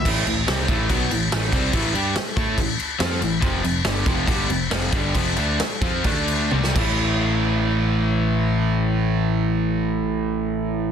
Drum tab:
CC |x-x-x-x-x-x-x-x-|x-x-x-x-x-x-x-x-|x-x-x-x-x-x-x-x-|x-x-x-x-x-x---x-|
SD |----o-------o---|----o-------o---|----o-------o---|----o--------o--|
T1 |----------------|----------------|----------------|------------o---|
BD |o-----o-o-----o-|o-----o-o-------|o-----o-o-----o-|o-----o-o-----o-|

CC |----------------|----------------|
SD |----------------|----------------|
T1 |----------------|----------------|
BD |----------------|----------------|